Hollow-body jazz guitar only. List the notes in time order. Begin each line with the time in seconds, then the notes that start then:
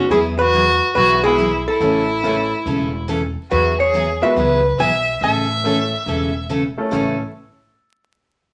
Already playing: F#4
0.11 G#4
0.39 B4
0.95 B4
1.24 G#4
1.68 A4
3.52 B4
3.80 C#5
4.23 E5
4.80 G#5
5.24 A5